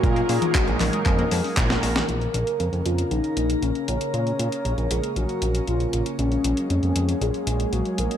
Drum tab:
HH |xxoxxxoxxxooxxox|xxxxxxxxxxxxxxxx|xxxxxxxxxxxxxxxx|xxxxxxxxxxxxxxxx|
CP |----x-x-x---x---|----------------|----------------|----------------|
SD |-------------o-o|----------------|----------------|----------------|
T1 |---o--o--------o|----------------|----------------|----------------|
BD |o---o---o---o---|----------------|----------------|----------------|